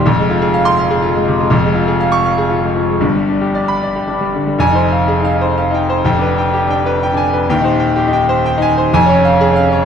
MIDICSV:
0, 0, Header, 1, 2, 480
1, 0, Start_track
1, 0, Tempo, 491803
1, 43, Time_signature, 3, 2, 24, 8
1, 2444, Tempo, 516796
1, 4844, Tempo, 480000
1, 9606, End_track
2, 0, Start_track
2, 0, Title_t, "Grand piano"
2, 0, Program_c, 0, 0
2, 0, Control_c, 0, 64, 127
2, 55, Note_on_c, 0, 29, 94
2, 60, Control_c, 0, 64, 0
2, 62, Note_on_c, 0, 41, 94
2, 179, Note_on_c, 0, 56, 68
2, 246, Control_c, 0, 64, 127
2, 296, Note_on_c, 0, 65, 77
2, 358, Note_off_c, 0, 56, 0
2, 407, Note_on_c, 0, 68, 85
2, 476, Note_off_c, 0, 65, 0
2, 526, Note_on_c, 0, 77, 92
2, 591, Note_off_c, 0, 68, 0
2, 637, Note_on_c, 0, 84, 118
2, 709, Note_off_c, 0, 77, 0
2, 769, Note_on_c, 0, 77, 80
2, 825, Note_off_c, 0, 84, 0
2, 884, Note_on_c, 0, 68, 81
2, 951, Note_off_c, 0, 77, 0
2, 998, Note_on_c, 0, 65, 80
2, 1069, Note_off_c, 0, 68, 0
2, 1123, Note_on_c, 0, 56, 79
2, 1186, Note_off_c, 0, 65, 0
2, 1250, Note_on_c, 0, 48, 72
2, 1307, Note_off_c, 0, 56, 0
2, 1366, Note_on_c, 0, 56, 79
2, 1431, Note_off_c, 0, 48, 0
2, 1435, Note_off_c, 0, 29, 0
2, 1439, Note_off_c, 0, 41, 0
2, 1466, Note_on_c, 0, 29, 93
2, 1476, Note_on_c, 0, 41, 88
2, 1477, Note_off_c, 0, 56, 0
2, 1486, Control_c, 0, 64, 0
2, 1595, Note_on_c, 0, 56, 68
2, 1672, Control_c, 0, 64, 127
2, 1707, Note_on_c, 0, 65, 71
2, 1785, Note_off_c, 0, 56, 0
2, 1832, Note_on_c, 0, 68, 76
2, 1902, Note_off_c, 0, 65, 0
2, 1956, Note_on_c, 0, 77, 82
2, 2025, Note_off_c, 0, 68, 0
2, 2067, Note_on_c, 0, 85, 99
2, 2149, Note_off_c, 0, 77, 0
2, 2202, Note_on_c, 0, 77, 75
2, 2266, Note_off_c, 0, 85, 0
2, 2323, Note_on_c, 0, 68, 73
2, 2396, Note_off_c, 0, 77, 0
2, 2436, Note_on_c, 0, 65, 69
2, 2516, Note_off_c, 0, 68, 0
2, 2552, Note_on_c, 0, 56, 64
2, 2631, Note_off_c, 0, 65, 0
2, 2677, Note_on_c, 0, 53, 57
2, 2751, Note_off_c, 0, 56, 0
2, 2804, Note_on_c, 0, 56, 60
2, 2876, Note_off_c, 0, 53, 0
2, 2891, Note_off_c, 0, 29, 0
2, 2895, Note_off_c, 0, 41, 0
2, 2906, Note_on_c, 0, 31, 75
2, 2916, Note_on_c, 0, 43, 80
2, 2928, Note_off_c, 0, 56, 0
2, 2948, Control_c, 0, 64, 0
2, 3047, Note_on_c, 0, 55, 62
2, 3094, Control_c, 0, 64, 127
2, 3171, Note_on_c, 0, 62, 57
2, 3246, Note_off_c, 0, 55, 0
2, 3288, Note_on_c, 0, 67, 65
2, 3369, Note_off_c, 0, 62, 0
2, 3413, Note_on_c, 0, 74, 70
2, 3488, Note_off_c, 0, 67, 0
2, 3539, Note_on_c, 0, 83, 85
2, 3611, Note_off_c, 0, 74, 0
2, 3674, Note_on_c, 0, 74, 64
2, 3734, Note_off_c, 0, 83, 0
2, 3792, Note_on_c, 0, 67, 58
2, 3863, Note_off_c, 0, 74, 0
2, 3904, Note_on_c, 0, 62, 62
2, 3982, Note_off_c, 0, 67, 0
2, 4024, Note_on_c, 0, 55, 62
2, 4098, Note_off_c, 0, 62, 0
2, 4153, Note_on_c, 0, 50, 60
2, 4219, Note_off_c, 0, 55, 0
2, 4269, Note_on_c, 0, 55, 56
2, 4335, Note_off_c, 0, 31, 0
2, 4340, Note_off_c, 0, 43, 0
2, 4340, Note_off_c, 0, 50, 0
2, 4377, Note_on_c, 0, 29, 81
2, 4384, Note_off_c, 0, 55, 0
2, 4389, Note_on_c, 0, 41, 86
2, 4390, Note_on_c, 0, 80, 106
2, 4402, Control_c, 0, 64, 0
2, 4493, Note_on_c, 0, 63, 70
2, 4527, Control_c, 0, 64, 127
2, 4531, Note_on_c, 0, 72, 67
2, 4632, Note_off_c, 0, 80, 0
2, 4680, Note_off_c, 0, 63, 0
2, 4690, Note_on_c, 0, 77, 73
2, 4779, Note_off_c, 0, 72, 0
2, 4837, Note_on_c, 0, 68, 78
2, 4941, Note_off_c, 0, 77, 0
2, 4969, Note_on_c, 0, 63, 66
2, 5001, Note_on_c, 0, 77, 80
2, 5101, Note_off_c, 0, 68, 0
2, 5163, Note_off_c, 0, 63, 0
2, 5170, Note_on_c, 0, 72, 70
2, 5264, Note_off_c, 0, 77, 0
2, 5333, Note_on_c, 0, 77, 73
2, 5429, Note_off_c, 0, 72, 0
2, 5462, Note_on_c, 0, 63, 71
2, 5500, Note_on_c, 0, 79, 68
2, 5590, Note_off_c, 0, 77, 0
2, 5650, Note_off_c, 0, 63, 0
2, 5652, Note_on_c, 0, 72, 78
2, 5658, Note_off_c, 0, 79, 0
2, 5772, Note_off_c, 0, 29, 0
2, 5779, Note_off_c, 0, 41, 0
2, 5802, Note_on_c, 0, 29, 86
2, 5811, Note_on_c, 0, 41, 82
2, 5813, Note_on_c, 0, 79, 79
2, 5815, Note_off_c, 0, 72, 0
2, 5836, Control_c, 0, 64, 0
2, 5933, Note_on_c, 0, 62, 63
2, 5969, Note_on_c, 0, 71, 67
2, 5989, Control_c, 0, 64, 127
2, 6073, Note_off_c, 0, 79, 0
2, 6129, Note_off_c, 0, 62, 0
2, 6140, Note_on_c, 0, 79, 73
2, 6231, Note_off_c, 0, 71, 0
2, 6291, Note_on_c, 0, 67, 75
2, 6397, Note_off_c, 0, 79, 0
2, 6425, Note_on_c, 0, 62, 73
2, 6461, Note_on_c, 0, 79, 81
2, 6552, Note_off_c, 0, 67, 0
2, 6615, Note_off_c, 0, 62, 0
2, 6616, Note_on_c, 0, 71, 77
2, 6717, Note_off_c, 0, 79, 0
2, 6787, Note_on_c, 0, 79, 80
2, 6873, Note_off_c, 0, 71, 0
2, 6890, Note_on_c, 0, 62, 77
2, 6927, Note_on_c, 0, 80, 87
2, 7037, Note_off_c, 0, 79, 0
2, 7084, Note_off_c, 0, 62, 0
2, 7089, Note_on_c, 0, 71, 69
2, 7091, Note_off_c, 0, 80, 0
2, 7208, Note_off_c, 0, 29, 0
2, 7213, Note_off_c, 0, 41, 0
2, 7243, Note_on_c, 0, 27, 81
2, 7251, Note_off_c, 0, 71, 0
2, 7252, Note_on_c, 0, 39, 97
2, 7258, Note_on_c, 0, 79, 86
2, 7270, Control_c, 0, 64, 0
2, 7365, Note_on_c, 0, 63, 73
2, 7399, Note_on_c, 0, 72, 73
2, 7418, Control_c, 0, 64, 127
2, 7510, Note_off_c, 0, 79, 0
2, 7553, Note_on_c, 0, 79, 72
2, 7559, Note_off_c, 0, 63, 0
2, 7660, Note_off_c, 0, 72, 0
2, 7717, Note_on_c, 0, 67, 80
2, 7817, Note_off_c, 0, 79, 0
2, 7831, Note_on_c, 0, 63, 79
2, 7887, Note_on_c, 0, 79, 82
2, 7979, Note_off_c, 0, 67, 0
2, 8033, Note_off_c, 0, 63, 0
2, 8047, Note_on_c, 0, 72, 88
2, 8145, Note_off_c, 0, 79, 0
2, 8215, Note_on_c, 0, 79, 90
2, 8304, Note_off_c, 0, 72, 0
2, 8331, Note_on_c, 0, 63, 88
2, 8377, Note_on_c, 0, 80, 98
2, 8469, Note_off_c, 0, 79, 0
2, 8523, Note_off_c, 0, 63, 0
2, 8532, Note_on_c, 0, 72, 79
2, 8534, Note_off_c, 0, 80, 0
2, 8647, Note_off_c, 0, 27, 0
2, 8651, Note_off_c, 0, 39, 0
2, 8688, Note_on_c, 0, 29, 87
2, 8693, Note_off_c, 0, 72, 0
2, 8693, Note_on_c, 0, 41, 105
2, 8697, Note_on_c, 0, 80, 114
2, 8708, Control_c, 0, 64, 0
2, 8816, Note_on_c, 0, 61, 82
2, 8846, Note_on_c, 0, 73, 83
2, 8871, Control_c, 0, 64, 127
2, 8952, Note_off_c, 0, 80, 0
2, 9005, Note_on_c, 0, 77, 89
2, 9006, Note_off_c, 0, 61, 0
2, 9104, Note_off_c, 0, 73, 0
2, 9164, Note_on_c, 0, 68, 94
2, 9261, Note_off_c, 0, 77, 0
2, 9285, Note_on_c, 0, 61, 76
2, 9317, Note_on_c, 0, 77, 87
2, 9418, Note_off_c, 0, 68, 0
2, 9475, Note_off_c, 0, 61, 0
2, 9479, Note_on_c, 0, 73, 79
2, 9574, Note_off_c, 0, 77, 0
2, 9606, Note_off_c, 0, 29, 0
2, 9606, Note_off_c, 0, 41, 0
2, 9606, Note_off_c, 0, 73, 0
2, 9606, End_track
0, 0, End_of_file